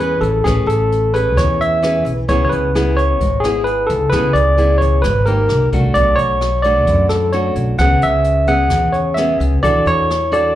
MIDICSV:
0, 0, Header, 1, 5, 480
1, 0, Start_track
1, 0, Tempo, 459067
1, 466, Time_signature, 4, 2, 24, 8
1, 11032, End_track
2, 0, Start_track
2, 0, Title_t, "Tine electric piano"
2, 0, Program_c, 0, 4
2, 0, Note_on_c, 0, 71, 78
2, 217, Note_on_c, 0, 69, 70
2, 233, Note_off_c, 0, 71, 0
2, 461, Note_on_c, 0, 68, 84
2, 469, Note_off_c, 0, 69, 0
2, 702, Note_on_c, 0, 69, 82
2, 710, Note_off_c, 0, 68, 0
2, 1188, Note_on_c, 0, 71, 78
2, 1198, Note_off_c, 0, 69, 0
2, 1434, Note_off_c, 0, 71, 0
2, 1437, Note_on_c, 0, 73, 87
2, 1678, Note_off_c, 0, 73, 0
2, 1683, Note_on_c, 0, 76, 81
2, 2121, Note_off_c, 0, 76, 0
2, 2391, Note_on_c, 0, 73, 86
2, 2544, Note_off_c, 0, 73, 0
2, 2557, Note_on_c, 0, 73, 64
2, 2607, Note_on_c, 0, 71, 77
2, 2627, Note_off_c, 0, 73, 0
2, 3101, Note_on_c, 0, 73, 77
2, 3110, Note_off_c, 0, 71, 0
2, 3557, Note_on_c, 0, 68, 76
2, 3597, Note_off_c, 0, 73, 0
2, 3792, Note_off_c, 0, 68, 0
2, 3808, Note_on_c, 0, 71, 82
2, 4042, Note_on_c, 0, 69, 77
2, 4063, Note_off_c, 0, 71, 0
2, 4275, Note_off_c, 0, 69, 0
2, 4283, Note_on_c, 0, 71, 94
2, 4516, Note_off_c, 0, 71, 0
2, 4530, Note_on_c, 0, 74, 91
2, 4983, Note_off_c, 0, 74, 0
2, 4998, Note_on_c, 0, 73, 79
2, 5248, Note_on_c, 0, 71, 85
2, 5258, Note_off_c, 0, 73, 0
2, 5478, Note_off_c, 0, 71, 0
2, 5495, Note_on_c, 0, 70, 72
2, 5945, Note_off_c, 0, 70, 0
2, 6211, Note_on_c, 0, 74, 97
2, 6436, Note_on_c, 0, 73, 94
2, 6464, Note_off_c, 0, 74, 0
2, 6926, Note_on_c, 0, 74, 84
2, 6944, Note_off_c, 0, 73, 0
2, 7380, Note_off_c, 0, 74, 0
2, 7416, Note_on_c, 0, 69, 71
2, 7642, Note_off_c, 0, 69, 0
2, 7660, Note_on_c, 0, 73, 73
2, 7884, Note_off_c, 0, 73, 0
2, 8142, Note_on_c, 0, 78, 96
2, 8389, Note_off_c, 0, 78, 0
2, 8397, Note_on_c, 0, 76, 88
2, 8866, Note_on_c, 0, 78, 89
2, 8884, Note_off_c, 0, 76, 0
2, 9331, Note_on_c, 0, 73, 67
2, 9359, Note_off_c, 0, 78, 0
2, 9561, Note_on_c, 0, 76, 70
2, 9584, Note_off_c, 0, 73, 0
2, 9794, Note_off_c, 0, 76, 0
2, 10067, Note_on_c, 0, 74, 93
2, 10312, Note_off_c, 0, 74, 0
2, 10324, Note_on_c, 0, 73, 94
2, 10798, Note_on_c, 0, 74, 87
2, 10807, Note_off_c, 0, 73, 0
2, 11032, Note_off_c, 0, 74, 0
2, 11032, End_track
3, 0, Start_track
3, 0, Title_t, "Nylon-string guitar"
3, 0, Program_c, 1, 24
3, 0, Note_on_c, 1, 52, 47
3, 0, Note_on_c, 1, 61, 52
3, 1, Note_on_c, 1, 68, 55
3, 7, Note_on_c, 1, 71, 54
3, 433, Note_off_c, 1, 61, 0
3, 435, Note_off_c, 1, 68, 0
3, 437, Note_off_c, 1, 71, 0
3, 447, Note_off_c, 1, 52, 0
3, 465, Note_on_c, 1, 61, 55
3, 469, Note_on_c, 1, 57, 55
3, 477, Note_on_c, 1, 71, 58
3, 1146, Note_off_c, 1, 61, 0
3, 1153, Note_off_c, 1, 71, 0
3, 1191, Note_on_c, 1, 61, 50
3, 1193, Note_on_c, 1, 68, 55
3, 1194, Note_on_c, 1, 71, 64
3, 1403, Note_off_c, 1, 57, 0
3, 1429, Note_on_c, 1, 52, 46
3, 1870, Note_off_c, 1, 61, 0
3, 1870, Note_off_c, 1, 68, 0
3, 1870, Note_off_c, 1, 71, 0
3, 1908, Note_on_c, 1, 61, 54
3, 1914, Note_on_c, 1, 68, 46
3, 1920, Note_on_c, 1, 71, 63
3, 2216, Note_off_c, 1, 61, 0
3, 2217, Note_off_c, 1, 68, 0
3, 2222, Note_off_c, 1, 71, 0
3, 2362, Note_off_c, 1, 52, 0
3, 2387, Note_on_c, 1, 49, 55
3, 2392, Note_on_c, 1, 59, 55
3, 2396, Note_on_c, 1, 64, 50
3, 2401, Note_on_c, 1, 68, 62
3, 2830, Note_off_c, 1, 59, 0
3, 2832, Note_off_c, 1, 64, 0
3, 2834, Note_off_c, 1, 68, 0
3, 2877, Note_on_c, 1, 59, 52
3, 2877, Note_on_c, 1, 64, 54
3, 2881, Note_on_c, 1, 68, 61
3, 3321, Note_off_c, 1, 49, 0
3, 3346, Note_off_c, 1, 64, 0
3, 3348, Note_off_c, 1, 59, 0
3, 3350, Note_off_c, 1, 68, 0
3, 3356, Note_on_c, 1, 44, 46
3, 3599, Note_on_c, 1, 59, 49
3, 3606, Note_on_c, 1, 64, 58
3, 3614, Note_on_c, 1, 68, 64
3, 4273, Note_off_c, 1, 59, 0
3, 4276, Note_off_c, 1, 64, 0
3, 4280, Note_off_c, 1, 68, 0
3, 4285, Note_off_c, 1, 44, 0
3, 4308, Note_on_c, 1, 49, 55
3, 4312, Note_on_c, 1, 59, 56
3, 4315, Note_on_c, 1, 64, 52
3, 4321, Note_on_c, 1, 68, 65
3, 4748, Note_off_c, 1, 64, 0
3, 4749, Note_off_c, 1, 59, 0
3, 4754, Note_off_c, 1, 68, 0
3, 4783, Note_on_c, 1, 59, 52
3, 4790, Note_on_c, 1, 64, 54
3, 4791, Note_on_c, 1, 68, 59
3, 5243, Note_off_c, 1, 49, 0
3, 5261, Note_off_c, 1, 59, 0
3, 5263, Note_off_c, 1, 64, 0
3, 5264, Note_off_c, 1, 68, 0
3, 5270, Note_on_c, 1, 44, 47
3, 5502, Note_on_c, 1, 58, 54
3, 5511, Note_on_c, 1, 63, 60
3, 5517, Note_on_c, 1, 67, 61
3, 5722, Note_off_c, 1, 44, 0
3, 5944, Note_off_c, 1, 58, 0
3, 5949, Note_off_c, 1, 63, 0
3, 5951, Note_off_c, 1, 67, 0
3, 5988, Note_on_c, 1, 57, 60
3, 5993, Note_on_c, 1, 62, 54
3, 6000, Note_on_c, 1, 66, 58
3, 6230, Note_on_c, 1, 47, 57
3, 6667, Note_off_c, 1, 57, 0
3, 6669, Note_off_c, 1, 62, 0
3, 6673, Note_off_c, 1, 66, 0
3, 6948, Note_on_c, 1, 57, 57
3, 6956, Note_on_c, 1, 62, 49
3, 6958, Note_on_c, 1, 66, 60
3, 7162, Note_off_c, 1, 47, 0
3, 7192, Note_on_c, 1, 42, 47
3, 7628, Note_off_c, 1, 57, 0
3, 7629, Note_off_c, 1, 62, 0
3, 7632, Note_off_c, 1, 66, 0
3, 7668, Note_on_c, 1, 57, 50
3, 7671, Note_on_c, 1, 62, 49
3, 7676, Note_on_c, 1, 66, 54
3, 8108, Note_off_c, 1, 57, 0
3, 8108, Note_off_c, 1, 62, 0
3, 8109, Note_off_c, 1, 66, 0
3, 8123, Note_off_c, 1, 42, 0
3, 8152, Note_on_c, 1, 49, 55
3, 8156, Note_on_c, 1, 59, 59
3, 8156, Note_on_c, 1, 61, 56
3, 8160, Note_on_c, 1, 68, 59
3, 8829, Note_off_c, 1, 59, 0
3, 8832, Note_off_c, 1, 61, 0
3, 8832, Note_off_c, 1, 68, 0
3, 8862, Note_on_c, 1, 59, 51
3, 8868, Note_on_c, 1, 61, 52
3, 8869, Note_on_c, 1, 68, 59
3, 9084, Note_off_c, 1, 49, 0
3, 9106, Note_on_c, 1, 49, 47
3, 9545, Note_off_c, 1, 59, 0
3, 9546, Note_off_c, 1, 68, 0
3, 9547, Note_off_c, 1, 61, 0
3, 9596, Note_on_c, 1, 59, 55
3, 9600, Note_on_c, 1, 61, 53
3, 9601, Note_on_c, 1, 68, 50
3, 10031, Note_off_c, 1, 59, 0
3, 10031, Note_off_c, 1, 61, 0
3, 10034, Note_off_c, 1, 68, 0
3, 10041, Note_off_c, 1, 49, 0
3, 10065, Note_on_c, 1, 62, 58
3, 10068, Note_on_c, 1, 52, 58
3, 10073, Note_on_c, 1, 66, 58
3, 10079, Note_on_c, 1, 69, 59
3, 10541, Note_off_c, 1, 62, 0
3, 10544, Note_off_c, 1, 66, 0
3, 10548, Note_off_c, 1, 69, 0
3, 10787, Note_on_c, 1, 62, 53
3, 10792, Note_on_c, 1, 66, 58
3, 10794, Note_on_c, 1, 69, 65
3, 11003, Note_off_c, 1, 52, 0
3, 11032, Note_off_c, 1, 62, 0
3, 11032, Note_off_c, 1, 66, 0
3, 11032, Note_off_c, 1, 69, 0
3, 11032, End_track
4, 0, Start_track
4, 0, Title_t, "Upright bass"
4, 0, Program_c, 2, 32
4, 0, Note_on_c, 2, 40, 75
4, 191, Note_off_c, 2, 40, 0
4, 222, Note_on_c, 2, 33, 83
4, 447, Note_off_c, 2, 33, 0
4, 481, Note_on_c, 2, 33, 91
4, 688, Note_off_c, 2, 33, 0
4, 694, Note_on_c, 2, 33, 81
4, 1442, Note_off_c, 2, 33, 0
4, 1442, Note_on_c, 2, 40, 81
4, 2111, Note_off_c, 2, 40, 0
4, 2142, Note_on_c, 2, 35, 83
4, 2366, Note_off_c, 2, 35, 0
4, 2393, Note_on_c, 2, 37, 97
4, 2612, Note_off_c, 2, 37, 0
4, 2633, Note_on_c, 2, 37, 81
4, 3351, Note_off_c, 2, 37, 0
4, 3351, Note_on_c, 2, 32, 81
4, 4025, Note_off_c, 2, 32, 0
4, 4074, Note_on_c, 2, 37, 90
4, 4292, Note_off_c, 2, 37, 0
4, 4315, Note_on_c, 2, 37, 95
4, 4533, Note_off_c, 2, 37, 0
4, 4544, Note_on_c, 2, 37, 84
4, 5270, Note_on_c, 2, 32, 78
4, 5286, Note_off_c, 2, 37, 0
4, 5713, Note_off_c, 2, 32, 0
4, 5739, Note_on_c, 2, 36, 87
4, 5964, Note_off_c, 2, 36, 0
4, 5991, Note_on_c, 2, 36, 80
4, 6210, Note_off_c, 2, 36, 0
4, 6223, Note_on_c, 2, 35, 92
4, 6446, Note_off_c, 2, 35, 0
4, 6471, Note_on_c, 2, 35, 75
4, 7186, Note_off_c, 2, 35, 0
4, 7186, Note_on_c, 2, 42, 81
4, 7862, Note_off_c, 2, 42, 0
4, 7901, Note_on_c, 2, 35, 81
4, 8125, Note_off_c, 2, 35, 0
4, 8142, Note_on_c, 2, 37, 94
4, 8365, Note_off_c, 2, 37, 0
4, 8384, Note_on_c, 2, 37, 79
4, 9105, Note_off_c, 2, 37, 0
4, 9105, Note_on_c, 2, 40, 80
4, 9782, Note_off_c, 2, 40, 0
4, 9829, Note_on_c, 2, 37, 82
4, 10049, Note_off_c, 2, 37, 0
4, 10070, Note_on_c, 2, 40, 90
4, 10290, Note_off_c, 2, 40, 0
4, 10308, Note_on_c, 2, 40, 82
4, 11032, Note_off_c, 2, 40, 0
4, 11032, End_track
5, 0, Start_track
5, 0, Title_t, "Drums"
5, 0, Note_on_c, 9, 42, 40
5, 104, Note_off_c, 9, 42, 0
5, 239, Note_on_c, 9, 42, 41
5, 343, Note_off_c, 9, 42, 0
5, 478, Note_on_c, 9, 36, 49
5, 485, Note_on_c, 9, 37, 53
5, 485, Note_on_c, 9, 42, 50
5, 583, Note_off_c, 9, 36, 0
5, 590, Note_off_c, 9, 37, 0
5, 590, Note_off_c, 9, 42, 0
5, 726, Note_on_c, 9, 42, 43
5, 830, Note_off_c, 9, 42, 0
5, 964, Note_on_c, 9, 42, 39
5, 1068, Note_off_c, 9, 42, 0
5, 1208, Note_on_c, 9, 42, 39
5, 1312, Note_off_c, 9, 42, 0
5, 1437, Note_on_c, 9, 36, 57
5, 1438, Note_on_c, 9, 37, 54
5, 1438, Note_on_c, 9, 42, 51
5, 1541, Note_off_c, 9, 36, 0
5, 1543, Note_off_c, 9, 37, 0
5, 1543, Note_off_c, 9, 42, 0
5, 1685, Note_on_c, 9, 42, 36
5, 1789, Note_off_c, 9, 42, 0
5, 1914, Note_on_c, 9, 37, 55
5, 1914, Note_on_c, 9, 42, 38
5, 2019, Note_off_c, 9, 37, 0
5, 2019, Note_off_c, 9, 42, 0
5, 2153, Note_on_c, 9, 42, 39
5, 2257, Note_off_c, 9, 42, 0
5, 2389, Note_on_c, 9, 42, 47
5, 2393, Note_on_c, 9, 36, 54
5, 2494, Note_off_c, 9, 42, 0
5, 2498, Note_off_c, 9, 36, 0
5, 2637, Note_on_c, 9, 42, 41
5, 2741, Note_off_c, 9, 42, 0
5, 2880, Note_on_c, 9, 37, 56
5, 2880, Note_on_c, 9, 42, 39
5, 2985, Note_off_c, 9, 37, 0
5, 2985, Note_off_c, 9, 42, 0
5, 3119, Note_on_c, 9, 42, 35
5, 3223, Note_off_c, 9, 42, 0
5, 3353, Note_on_c, 9, 36, 55
5, 3354, Note_on_c, 9, 42, 53
5, 3458, Note_off_c, 9, 36, 0
5, 3458, Note_off_c, 9, 42, 0
5, 3595, Note_on_c, 9, 37, 56
5, 3595, Note_on_c, 9, 42, 40
5, 3699, Note_off_c, 9, 37, 0
5, 3699, Note_off_c, 9, 42, 0
5, 3833, Note_on_c, 9, 42, 41
5, 3937, Note_off_c, 9, 42, 0
5, 4073, Note_on_c, 9, 42, 43
5, 4177, Note_off_c, 9, 42, 0
5, 4310, Note_on_c, 9, 36, 51
5, 4310, Note_on_c, 9, 37, 50
5, 4310, Note_on_c, 9, 42, 48
5, 4414, Note_off_c, 9, 36, 0
5, 4414, Note_off_c, 9, 37, 0
5, 4414, Note_off_c, 9, 42, 0
5, 4550, Note_on_c, 9, 42, 43
5, 4655, Note_off_c, 9, 42, 0
5, 4792, Note_on_c, 9, 42, 41
5, 4896, Note_off_c, 9, 42, 0
5, 5030, Note_on_c, 9, 36, 46
5, 5037, Note_on_c, 9, 42, 38
5, 5135, Note_off_c, 9, 36, 0
5, 5141, Note_off_c, 9, 42, 0
5, 5267, Note_on_c, 9, 37, 53
5, 5267, Note_on_c, 9, 42, 55
5, 5269, Note_on_c, 9, 36, 53
5, 5372, Note_off_c, 9, 37, 0
5, 5372, Note_off_c, 9, 42, 0
5, 5373, Note_off_c, 9, 36, 0
5, 5505, Note_on_c, 9, 42, 36
5, 5609, Note_off_c, 9, 42, 0
5, 5741, Note_on_c, 9, 37, 52
5, 5741, Note_on_c, 9, 42, 40
5, 5846, Note_off_c, 9, 37, 0
5, 5846, Note_off_c, 9, 42, 0
5, 5986, Note_on_c, 9, 42, 42
5, 5987, Note_on_c, 9, 36, 51
5, 6090, Note_off_c, 9, 42, 0
5, 6091, Note_off_c, 9, 36, 0
5, 6220, Note_on_c, 9, 42, 47
5, 6225, Note_on_c, 9, 36, 46
5, 6324, Note_off_c, 9, 42, 0
5, 6330, Note_off_c, 9, 36, 0
5, 6467, Note_on_c, 9, 42, 39
5, 6572, Note_off_c, 9, 42, 0
5, 6703, Note_on_c, 9, 37, 53
5, 6703, Note_on_c, 9, 42, 35
5, 6808, Note_off_c, 9, 37, 0
5, 6808, Note_off_c, 9, 42, 0
5, 6943, Note_on_c, 9, 42, 36
5, 7048, Note_off_c, 9, 42, 0
5, 7182, Note_on_c, 9, 42, 52
5, 7187, Note_on_c, 9, 36, 53
5, 7286, Note_off_c, 9, 42, 0
5, 7291, Note_off_c, 9, 36, 0
5, 7417, Note_on_c, 9, 37, 55
5, 7417, Note_on_c, 9, 42, 38
5, 7521, Note_off_c, 9, 37, 0
5, 7521, Note_off_c, 9, 42, 0
5, 7661, Note_on_c, 9, 42, 44
5, 7765, Note_off_c, 9, 42, 0
5, 7901, Note_on_c, 9, 42, 42
5, 8006, Note_off_c, 9, 42, 0
5, 8137, Note_on_c, 9, 37, 47
5, 8137, Note_on_c, 9, 42, 49
5, 8146, Note_on_c, 9, 36, 50
5, 8242, Note_off_c, 9, 37, 0
5, 8242, Note_off_c, 9, 42, 0
5, 8251, Note_off_c, 9, 36, 0
5, 8384, Note_on_c, 9, 42, 44
5, 8488, Note_off_c, 9, 42, 0
5, 8617, Note_on_c, 9, 42, 43
5, 8721, Note_off_c, 9, 42, 0
5, 8858, Note_on_c, 9, 42, 40
5, 8963, Note_off_c, 9, 42, 0
5, 9096, Note_on_c, 9, 37, 54
5, 9096, Note_on_c, 9, 42, 58
5, 9105, Note_on_c, 9, 36, 51
5, 9200, Note_off_c, 9, 37, 0
5, 9200, Note_off_c, 9, 42, 0
5, 9210, Note_off_c, 9, 36, 0
5, 9343, Note_on_c, 9, 42, 37
5, 9448, Note_off_c, 9, 42, 0
5, 9585, Note_on_c, 9, 37, 53
5, 9585, Note_on_c, 9, 42, 43
5, 9689, Note_off_c, 9, 37, 0
5, 9689, Note_off_c, 9, 42, 0
5, 9836, Note_on_c, 9, 42, 42
5, 9941, Note_off_c, 9, 42, 0
5, 10073, Note_on_c, 9, 36, 53
5, 10079, Note_on_c, 9, 42, 50
5, 10177, Note_off_c, 9, 36, 0
5, 10183, Note_off_c, 9, 42, 0
5, 10317, Note_on_c, 9, 42, 41
5, 10421, Note_off_c, 9, 42, 0
5, 10567, Note_on_c, 9, 37, 57
5, 10567, Note_on_c, 9, 42, 36
5, 10671, Note_off_c, 9, 37, 0
5, 10671, Note_off_c, 9, 42, 0
5, 10804, Note_on_c, 9, 42, 36
5, 10909, Note_off_c, 9, 42, 0
5, 11032, End_track
0, 0, End_of_file